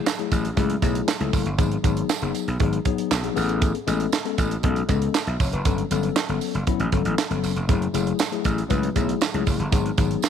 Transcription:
0.06 snare, clap, tambourine
0.19 F#3 A3 E4 G#4, closed hi-hat
0.32 A1, kick, closed hi-hat, tambourine
0.45 closed hi-hat
0.56 C#2 F#3 A3 E4 G#4, kick, closed hi-hat, tambourine
0.70 closed hi-hat
0.82 B1 F#3 A3 E4 G#4, kick, closed hi-hat, tambourine
0.95 closed hi-hat
1.08 snare, clap, tambourine
1.20 C#2 F#3 A3 E4 A4, closed hi-hat
1.33 F#1, kick, open hi-hat, tambourine
1.46 G1, closed hi-hat
1.58 G#1 F#3 B3 D#4 G#4, kick, closed hi-hat, tambourine
1.72 closed hi-hat
1.84 G#1 F#3 B3 D#4 G#4, kick, closed hi-hat, tambourine
1.97 closed hi-hat
2.09 snare, clap, tambourine
2.22 F#1 F#3 B3 D#4 G#4, closed hi-hat
2.35 closed hi-hat, tambourine
2.48 B1, closed hi-hat
2.60 G#1 F#3 B3 D#4 G#4, kick, closed hi-hat
2.73 closed hi-hat
2.85 F#3 B3 D#4 G#4, kick, closed hi-hat
2.98 closed hi-hat
3.11 B1, snare, clap, tambourine
3.23 F#3 B3 D#4 G#4, closed hi-hat
3.36 A1 B3 C#4 G#4 A4, open hi-hat, tambourine
3.49 closed hi-hat
3.62 kick, closed hi-hat, tambourine
3.75 closed hi-hat
3.87 A1 G#3 B3 C#4 A4, closed hi-hat, tambourine
4.00 closed hi-hat
4.12 snare, clap, tambourine
4.25 G#3 B3 C#4 A4, closed hi-hat
4.38 A1, kick, closed hi-hat, tambourine
4.51 closed hi-hat
4.63 B1 G#3 B3 C#4 A4, kick, closed hi-hat
4.76 closed hi-hat
4.88 C#2 G#3 B3 C#4 A4, kick, closed hi-hat, tambourine
5.02 closed hi-hat
5.15 snare, clap, tambourine
5.27 B1 E5, closed hi-hat
5.40 F1 C#5, kick, open hi-hat, tambourine
5.53 F#1 B4, closed hi-hat
5.65 G1 F#3 B3 C#4 A4, kick, closed hi-hat, tambourine
5.78 closed hi-hat
5.91 G1 F#3 B3 C#4 A4, closed hi-hat, tambourine
6.03 closed hi-hat
6.16 snare, clap, tambourine
6.29 G1 F#3 B3 C#4 A4, closed hi-hat
6.41 open hi-hat, tambourine
6.55 F#1, closed hi-hat
6.67 F#3 B3 C#4 E4, kick, closed hi-hat
6.80 A1, closed hi-hat
6.92 G1 F#3 B3 C#4 A4, kick, closed hi-hat
7.05 A1, closed hi-hat
7.18 snare, clap, tambourine
7.30 G1 F#3 B3 C#4 A4, closed hi-hat
7.43 F#1, open hi-hat, tambourine
7.56 F1, closed hi-hat
7.68 F#1 F#3 A3 E4 G#4, kick, closed hi-hat, tambourine
7.82 closed hi-hat
7.94 F#1 F#3 A3 E4 G#4, closed hi-hat, tambourine
8.07 closed hi-hat
8.19 snare, clap, tambourine
8.32 F#3 A3 E4 G#4, closed hi-hat
8.44 A1, kick, closed hi-hat, tambourine
8.58 closed hi-hat
8.69 C#2 F#3 A3 E4 B4, kick, closed hi-hat, tambourine
8.83 closed hi-hat
8.96 B1 F#3 A3 E4 G#4, kick, closed hi-hat, tambourine
9.09 closed hi-hat
9.21 snare, clap, tambourine
9.34 C#2 F#3 A3 E4 G#4, closed hi-hat
9.47 F#1, kick, open hi-hat, tambourine
9.59 G1, closed hi-hat
9.72 G#1 F#3 B3 D#4 G#4, kick, closed hi-hat, tambourine
9.86 closed hi-hat
9.97 G#1 F#3 B3 D#4 G#4, kick, closed hi-hat, tambourine
10.11 closed hi-hat
10.22 snare, clap, tambourine

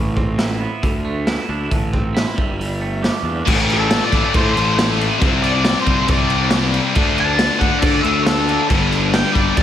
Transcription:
Already playing: A1 A2 A3
0.17 C4, kick
0.38 E4, snare, open hi-hat
0.61 B3
0.83 D2 D3, kick, open hi-hat
1.05 A3
1.27 E4, snare, open hi-hat
1.49 D2 D4
1.71 A1 A2, kick, open hi-hat
1.93 C4, kick
2.14 E4, snare, open hi-hat
2.36 G1 G3, kick
2.59 G3, open hi-hat
2.81 A3
3.03 G4, snare, open hi-hat
3.23 E2 D4
3.46 A1 A2 E3 A3, kick, crash
3.70 A4, crash
3.91 snare, crash
4.04 D5
4.11 A1 A2 E3 A3, kick, crash
4.34 A2 C5, kick, crash
4.57 A1, crash
4.79 snare, crash
5.01 crash
5.19 C2 C3 G3, kick, crash
5.23 C4
5.43 D5, crash
5.65 snare, crash
5.81 C4 C5
5.86 C2 C3 G3, kick, crash
6.08 C2 D5, kick, crash
6.30 crash
6.51 snare, crash
6.74 crash
6.94 D2 D3 A3, kick, crash
6.98 D4
7.18 A5, crash
7.39 snare, crash
7.59 D2 D3 A3 D4 F#5, kick, crash
7.79 D3 D5, crash
7.83 kick
8.01 D2 E5, crash
8.23 A4, snare, crash
8.49 crash
8.68 G1 G2 D3 G3, kick, crash
8.92 crash
9.14 G5, snare, crash
9.33 G1 G2 D3 G3 D5, kick, crash
9.57 G1 D5, kick, crash

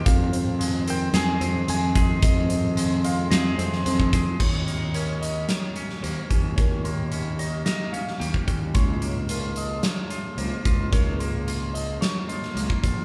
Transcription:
Already playing: D#3 C4
0.04 F2 C4 F4 G#4 F5, kick, closed hi-hat
0.32 C5, closed hi-hat
0.59 G#3, closed hi-hat
0.87 C4 A#4 G5, closed hi-hat
1.13 F2 G#4 G#5, snare, closed hi-hat
1.41 F2 C4 C5, closed hi-hat
1.68 F2 G#3 G#5, closed hi-hat
1.95 G#4 D#5, kick, closed hi-hat
2.22 F2 D#5, kick, closed hi-hat
2.49 C5, closed hi-hat
2.77 G#3, closed hi-hat
3.04 C4 D#5 F5, closed hi-hat
3.30 F2 G#4 D#5, snare, closed hi-hat
3.58 F2 C4 C5, closed hi-hat
3.73 snare
3.85 F2 G#3 C5, closed hi-hat
4.00 kick
4.13 G#4, kick, closed hi-hat
4.40 D#2 C#3 D#3 A#3 D#4 G4 C#5 C6, kick, crash
4.67 A#3, closed hi-hat
4.94 C#4 A#4 C#5, closed hi-hat
5.22 D#3 D#5, closed hi-hat
5.48 A#3 C#5, snare, closed hi-hat
5.76 C#4, closed hi-hat
5.90 snare
6.02 D#2 A#3 C5, closed hi-hat
6.30 D#2 C#4, kick, closed hi-hat
6.56 D#2 D#3 A#4 C#5, kick, closed hi-hat
6.84 A#3 C6, closed hi-hat
7.12 C#4, closed hi-hat
7.39 D#3 C#5 D#5, closed hi-hat
7.66 A#3 D#5, snare, closed hi-hat
7.92 C#4 D#5 F5, closed hi-hat
8.08 snare
8.20 D#2 A#3 G5, closed hi-hat
8.34 kick
8.47 D#2 C#4 C#5, kick, closed hi-hat
8.74 C#2 C#3 F4 G#4 C#5 C6, kick, closed hi-hat
9.02 A#3, closed hi-hat
9.29 F4 A#4, closed hi-hat
9.56 F3 D#5, closed hi-hat
9.83 A#3 C#5, snare, closed hi-hat
10.10 F4, closed hi-hat
10.37 C#2 A#3 C5, closed hi-hat
10.65 C#2 F4, kick, closed hi-hat
10.90 C#2 C#3 A#4 C#5, kick, closed hi-hat
11.19 A#3 C6, closed hi-hat
11.47 F4, closed hi-hat
11.73 F3 C#5 D#5, closed hi-hat
12.01 A#3 C#5, snare, closed hi-hat
12.28 F4 D#5, closed hi-hat
12.43 snare
12.55 C#2 A#3, closed hi-hat
12.70 kick
12.82 A#1 F4 C#5, kick, closed hi-hat

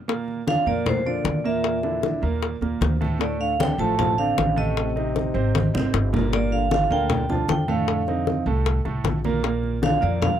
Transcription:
0.08 A#2 A#3 A#4, high bongo, high conga
0.28 high conga
0.47 D3 D4 F4 F5, high bongo, high conga
0.66 F2 A#2 A#3 A#4 D5, high conga
0.86 A2 C5, high bongo, high conga, low conga
1.05 A#2 D3 D4 F4 D5, high conga
1.25 E2, high bongo, low bongo, high conga
1.44 A#2 A#3 A#4 E5
1.64 high bongo, high conga
1.83 D3 D4 E4, high bongo, high conga
2.03 D3 D4 E4, high bongo, high conga
2.22 D#2 A#2 A#3 A#4
2.42 high bongo, high conga
2.61 D#2 A#2 A#3 A#4, high bongo, high conga
2.81 D2, high bongo, low bongo, high conga
3.01 A2 A3 A4, high bongo, high conga
3.19 A2 A3 A4 D5, high bongo, high conga
3.40 D3 F5, high conga
3.59 C3 D3 C4 D4 G5, high bongo, high conga
3.78 A1 A2 F3 A3 A4 A5, high conga
3.98 F3 A5, high bongo, high conga, low conga
4.18 C3 D3 C4 D4 F5, high conga
4.38 A1, high bongo, low bongo, high conga
4.56 A2 C3 A3 A4 D#5, high conga
4.77 high bongo, high conga
4.96 C3 C4 D#4, high bongo, high conga
5.15 C3 C4 D#4, high bongo, high conga
5.34 G#1 C3 C4 C5
5.55 high bongo, high conga
5.74 G#1 C3 C4 C5, high bongo, low conga
5.94 G1, high bongo, low bongo
6.13 A#2 A#3 A#4, high bongo, low conga
6.32 A#2 A#3 A#4 D5, high bongo, high conga
6.52 D3 F5, high conga
6.71 D3 D4 F4 F5, high bongo, high conga
6.82 D3 F5
6.90 D2 A#2 D3 A#3 A#4 G5, high conga
7.10 high bongo, high conga, low conga
7.29 D3 F3 D4 F4 A5, high conga, low conga
7.48 F2 D3 G5, high bongo, low bongo, high conga
7.68 A2 D3 A3 A4 F5, high conga
7.88 high bongo, high conga
8.07 C3 C4 D#4, high bongo, high conga
8.26 C3 C4 D#4, high bongo, high conga
8.46 C2 A2 A3 A4
8.66 high bongo, high conga
8.85 C2 A2 A3 A4, high bongo, high conga
9.04 A#1, high bongo, low bongo, high conga
9.24 A#2 A#3 A#4, high bongo, high conga
9.43 A#2 A#3 A#4, high bongo, high conga
9.63 high conga
9.82 D3 D4 F4 F5, high bongo, high conga
10.01 F2 A#2 A#3 A#4 D5, high conga
10.22 D3 F5, high bongo, high conga, low conga

